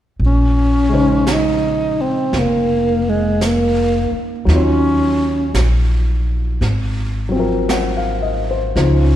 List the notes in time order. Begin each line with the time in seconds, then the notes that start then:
0.20 A#1, brush sweep
0.26 C#4
0.89 C#3 G#3 D#4
0.94 C5
1.27 brush sweep, snare, hi-hat pedal
1.33 D#4
2.01 C4
2.33 F1, brush sweep, snare
2.39 A#3
3.09 G#3
3.41 brush sweep, snare, hi-hat pedal
3.46 A#3
4.12 muted upright bass stroke
4.45 D#2 F#3 D#4, brush sweep, snare
4.52 C#4 F4 C#5
5.54 A#1, brush sweep, snare, hi-hat pedal
6.61 G#1, brush sweep, snare
7.29 F#3 C4
7.36 F3 A#4
7.69 F#5, brush sweep, snare, hi-hat pedal
7.97 F5
8.22 D#5
8.51 C5
8.76 C#2 C#3 F3 D#4 C5, brush sweep, snare
8.81 C#4